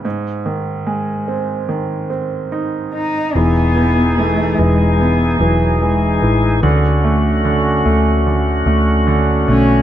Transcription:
<<
  \new Staff \with { instrumentName = "Tonewheel organ" } { \time 4/4 \key e \major \tempo 4 = 73 r1 | <e dis' gis'>1 | <d cis' fis'>1 | }
  \new Staff \with { instrumentName = "Cello" } { \time 4/4 \key e \major r2. r8 dis'8 | b4 a8 gis8 b8 fis8 gis8. r16 | r2. r8 cis'8 | }
  \new Staff \with { instrumentName = "Grand piano" } { \clef bass \time 4/4 \key e \major gis,8 dis8 gis8 bis8 dis8 bis8 dis'4 | e8 e8 e8 e8 e8 e8 e8 e8 | d8 a8 d8 a8 d8 a8 d8 a8 | }
  \new Staff \with { instrumentName = "Fingered electric bass" } { \clef bass \time 4/4 \key e \major r1 | e,,4. e,,4 e,,4 a,,8 | d,4. d,4 d,4 b,,8 | }
>>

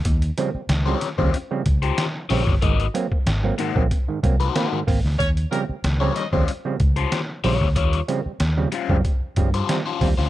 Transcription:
<<
  \new Staff \with { instrumentName = "Horn section" } { \time 4/4 \key ees \mixolydian \tempo 4 = 93 r1 | r1 | <des' des''>16 r16 <bes bes'>16 r8 <des' des''>16 <ees' ees''>16 r2 r16 | r1 | }
  \new Staff \with { instrumentName = "Overdriven electric guitar" } { \time 4/4 \key ees \mixolydian r4 r16 <des' f' g' des''>16 r16 <des' f' g' c''>16 r8. <des' f' g' c''>16 r8 <des' f' g' des''>16 r16 | <bes ees' ges' ees''>16 r4 r16 <bes ees' ges' c''>16 r4 <bes ees' ges' c''>16 <bes ees' ges' c''>16 r8. | r4 r16 <g des' f' des''>16 r16 <g des' f' c''>16 r8. <g des' f' c''>16 r8 <g des' f' des''>16 r16 | <g des' f' des''>16 r4 r16 <g des' f' c''>16 r4 <g des' f' c''>16 r16 <g des' f' c''>16 r16 <g des' f' c''>16 | }
  \new Staff \with { instrumentName = "Clav" } { \clef bass \time 4/4 \key ees \mixolydian r8 <des f g c'>16 <g c'>16 r16 <des f g c'>16 r16 <des f g c'>16 r16 <des f g c'>16 r4 <des f g c'>16 <g c'>16 | <aes, ees>16 r16 <ges bes c'>16 <bes c'>16 r16 <ges bes c'>16 <aes, ees>16 <ges bes c'>16 <bes c'>16 <aes, ees>16 <ges bes c'>16 r16 <bes c'>16 <aes, ees>16 <bes c'>16 r16 | r8 <des f g c'>16 <g c'>16 r16 <des f g c'>16 r16 <des f g c'>16 r16 <des f g c'>16 r4 <des f g c'>16 <g c'>16 | r8 <des f g c'>16 <g c'>16 r16 <des f g c'>16 r16 <des f g c'>16 r8 <des f g c'>16 r16 <g c'>16 r16 <g c'>16 r16 | }
  \new Staff \with { instrumentName = "Fingered electric bass" } { \clef bass \time 4/4 \key ees \mixolydian ees,8 r8 des,8 r16 ees,16 r8 des,8 r8 bes,,16 g,,16 | aes,,8 r8 aes,,8 r16 bes,,16 r8 c,8 r8 aes,,16 d,16 | ees,8 r8 des,8 r16 ees,16 r8 des,8 r8 bes,,16 d,16 | ees,8 r8 ees,8 r16 ges,16 r8 g,8 r8 ees,16 d,16 | }
  \new DrumStaff \with { instrumentName = "Drums" } \drummode { \time 4/4 <hh bd>16 hh16 hh8 <hh sn>8 <hh sn>16 bd16 hh8 <hh bd>16 hh16 <hh sn>8 hho16 <bd sn>16 | <hh bd>16 hh16 hh16 bd16 <hh sn>8 hh16 bd16 <hh bd>8 <hh bd>16 hh16 <hh sn>8 <hho bd>16 sn16 | <hh bd>16 hh16 hh8 <hh sn>8 <hh sn>16 bd16 hh8 <hh bd>16 hh16 <hh sn>8 hho16 <bd sn>16 | <hh bd>16 hh16 hh8 <hh sn>8 hh16 bd16 <hh bd>8 <hh bd>16 hh16 <hh sn>8 <hho bd>16 sn16 | }
>>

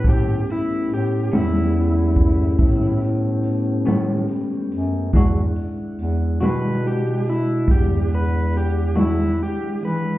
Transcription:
<<
  \new Staff \with { instrumentName = "Electric slide guitar" } { \time 12/8 \key a \major \tempo 4. = 47 g'8 e'8 g'8 e'2 r2 r8 | r4. b'8 g'8 e'8 g'8 b'8 g'8 e'8 g'8 b'8 | }
  \new Staff \with { instrumentName = "Tonewheel organ" } { \time 12/8 \key a \major <a b cis' g'>1. | <gis d' e' fis''>1. | }
  \new Staff \with { instrumentName = "Clean electric guitar" } { \time 12/8 \key a \major r4. <a, g b cis'>8 r2 r8 <a, g b cis'>8 r4 | <e gis d' fis'>8 r4 <e gis d' fis'>8 r2 r8 <e gis d' fis'>8 r4 | }
  \new Staff \with { instrumentName = "Bass clarinet" } { \clef bass \time 12/8 \key a \major a,8 r8 a,8 e,4. a,4. a,8 r8 fis,8 | e,8 r8 e,8 b,4. e,4. e,8 r8 e8 | }
  \new DrumStaff \with { instrumentName = "Drums" } \drummode { \time 12/8 <hh bd>8 hh8 hh8 <hh sn>8 hh8 <hh bd>8 <hh bd>8 hh8 hh8 <hh sn>8 hh8 hh8 | <hh bd>8 hh8 hh8 <hh sn>8 hh8 hh8 <hh bd>8 hh8 hh8 <hh sn>8 hh8 <hh sn>8 | }
>>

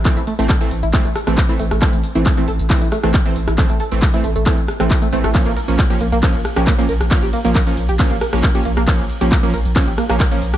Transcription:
<<
  \new Staff \with { instrumentName = "Synth arpeggio sound" } { \time 4/4 \key a \phrygian \tempo 4 = 136 r16 e'16 a16 a16 a'16 r8 e'16 a16 a16 a'16 r8 e'16 a16 a16 | a'16 r8 e'16 a16 a16 a'16 r8 e'16 a16 a16 a'16 r8 e'16 | a16 a16 a'16 r8 e'16 a16 a16 a'16 r8 c'16 a16 a16 a16 a16 | bes16 bes16 bes'16 r8 g'16 bes16 bes16 bes'16 r8 g'16 bes16 bes16 bes'16 r16 |
r16 g'16 bes16 bes16 bes'16 r8 g'16 bes16 bes16 bes'16 r8 g'16 bes16 bes16 | bes'16 r8 g'16 bes16 bes16 bes'16 r8 g'16 bes16 bes16 bes'16 r8 g'16 | }
  \new Staff \with { instrumentName = "Supersaw synth" } { \time 4/4 \key a \phrygian <e a c'>16 r8 <e a c'>16 r16 <e a c'>16 r8 <e a c'>16 r8 <e a c'>16 r16 <e a c'>16 r8 | <e a c'>16 r8 <e a c'>16 r16 <e a c'>16 r8 <e a c'>16 r8 <e a c'>16 r16 <e a c'>16 r8 | <e a c'>16 r8 <e a c'>16 r16 <e a c'>16 r8 <e a c'>16 r8 <e a c'>8. <e a c'>8 | <f bes des'>16 r8 <f bes des'>16 r16 <f bes des'>16 r8 <f bes des'>16 r8 <f bes des'>16 r16 <f bes des'>16 r8 |
<f bes des'>16 r8 <f bes des'>16 r16 <f bes des'>16 r8 <f bes des'>16 r8 <f bes des'>16 r16 <f bes des'>16 r8 | <f bes des'>16 r8 <f bes des'>16 r16 <f bes des'>16 r8 <f bes des'>16 r8 <f bes des'>16 r16 <f bes des'>16 r8 | }
  \new Staff \with { instrumentName = "Sub bass" } { \clef bass \time 4/4 \key a \phrygian r16 a,,16 r16 a,,16 r8 a,,16 a,,16 r16 a,,16 r16 a,,16 r8 a,,16 a,,16 | r16 a,,16 r16 a,,16 r8 a,,16 a,,16 r16 a,,16 r16 a,,16 r8 a,,16 a,,16 | r16 a,,16 r16 a,,16 r8 a,,16 a,,16 r16 a,,16 r16 a,,16 r8 a,,16 a,,16 | r16 bes,,16 r16 bes,,16 r8 bes,,16 bes,,16 r16 bes,,16 r16 bes,,16 r8 bes,,16 bes,,16 |
r16 bes,,16 r16 bes,,16 r8 bes,,16 bes,,16 r16 bes,,16 r16 bes,,16 r8 bes,,16 bes,,16 | r16 bes,,16 r16 bes,,16 r8 bes,,16 bes,,16 r16 bes,,16 r16 bes,,16 r8 bes,,16 bes,,16 | }
  \new DrumStaff \with { instrumentName = "Drums" } \drummode { \time 4/4 <hc hh bd>16 hh16 hho16 hh16 <hc hh bd>16 hh16 hho16 hh16 <hc hho bd>16 hh16 <hho ss>16 <hh ss>16 <hc hh bd>16 hh16 hho16 <hh ss>16 | <hc hh bd>16 hh16 hho16 hh16 <hc hh bd>16 hh16 hho16 hh16 <hc hh bd>16 hh16 <hho ss>16 <hh ss>16 <hc hh bd>16 hh16 hho16 <hh ss>16 | <hc hh bd>16 hh16 hho16 hh16 <hc hh bd>16 hh16 hho16 hh16 <hc hho bd>16 hh16 <hho ss>16 <hh ss>16 <hc hh bd>16 hh16 hho16 <hh ss>16 | <hc hh bd cymr>16 hh16 hho16 hh16 <hc hh bd cymr>16 hh16 hho16 hh16 <hc hh bd cymr>16 hh16 <hho ss>16 <hh ss>16 <hc hh bd cymr>16 hh16 hho16 <hh ss>16 |
<hc hh bd cymr>16 hh16 hho16 hh16 <hc hh bd cymr>16 hh16 hho16 hh16 <hc hho bd cymr>16 hh16 <hho ss>16 <hh ss>16 <hc hh bd cymr>16 hh16 hho16 <hh ss>16 | <hc hh bd cymr>16 hh16 hho16 hh16 <hc hh bd cymr>16 hh16 hho16 hh16 <hc hh bd cymr>16 hh16 <hho ss>16 <hh ss>16 <hc hh bd cymr>16 hh16 hho16 <hh ss>16 | }
>>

